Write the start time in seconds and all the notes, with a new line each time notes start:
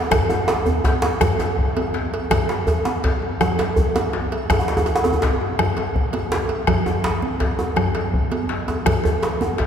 0.11 bombo rim, bombo low, cowbell, djembe bass, low conga
0.30 bombo rim, djembe slap, djembe tone
0.48 cowbell, djembe slap, high conga
0.66 bombo rim, high conga, djembe bass
0.84 bombo rim, bombo low, cowbell, djembe slap, djembe tone
1.02 djembe slap, djembe tone
1.21 bombo rim, cowbell, high conga, djembe bass, low conga
1.39 cowbell, djembe slap, djembe tone
1.58 bombo rim, bombo low
1.77 cowbell, djembe tone, high conga
1.94 djembe slap, high conga
2.14 cowbell
2.31 bombo rim, bombo low, cowbell, djembe tone, low conga, djembe bass
2.49 bombo rim, djembe slap, djembe tone
2.67 cowbell, high conga, djembe bass
2.85 bombo rim, djembe slap, high conga
3.04 bombo rim, bombo low, cowbell, djembe slap, high conga
3.22 djembe tone
3.41 bombo rim, cowbell, djembe tone, high conga, djembe bass, low conga
3.59 cowbell, djembe slap
3.76 bombo rim, bombo low, djembe bass
3.95 cowbell, djembe slap, djembe tone, high conga
4.13 djembe slap, high conga
4.32 cowbell
4.50 bombo rim, bombo low, cowbell, djembe slap, djembe tone, low conga, djembe bass
4.59 djembe tone
4.68 djembe slap
4.77 djembe tone
4.86 cowbell, djembe slap, djembe tone
4.96 djembe slap
5.04 djembe tone, high conga
5.13 djembe tone
5.22 bombo low, cowbell, djembe slap, high conga
5.41 bombo rim, djembe tone
5.59 bombo rim, cowbell, low conga, djembe bass
5.77 cowbell, djembe slap, high conga
5.95 bombo low, djembe slap, high conga
6.13 bombo rim, cowbell, high conga, djembe tone
6.32 djembe slap
6.49 cowbell, high conga
6.67 bombo rim, bombo low, cowbell, low conga, djembe bass
6.86 bombo rim, djembe slap, djembe tone
7.04 cowbell, djembe slap, high conga
7.22 bombo rim, high conga
7.40 bombo rim, bombo low, cowbell, djembe slap, high conga
7.59 djembe tone
7.76 bombo rim, cowbell, high conga, djembe bass, low conga
7.95 cowbell, djembe slap
8.13 bombo rim, bombo low
8.31 cowbell, djembe tone, high conga
8.49 djembe slap, high conga
8.68 cowbell, djembe tone
8.86 bombo rim, bombo low, cowbell, djembe bass, low conga
9.04 bombo rim, djembe slap, djembe tone, djembe bass
9.23 cowbell, djembe slap, high conga
9.41 bombo rim, high conga, djembe tone
9.58 bombo rim, bombo low, cowbell, djembe slap, high conga